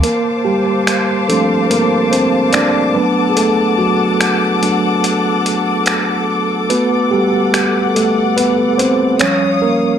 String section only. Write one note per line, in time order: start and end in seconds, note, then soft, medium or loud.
0.04 2.93 C5 medium
0.04 2.93 F5 medium
0.04 6.67 A5 medium
0.04 9.17 D6 medium
2.95 9.16 A4 medium
2.95 6.66 F#5 medium
6.71 9.18 F#5 medium
9.21 9.99 C#5 medium
9.21 9.99 F5 medium
9.21 9.99 D#6 medium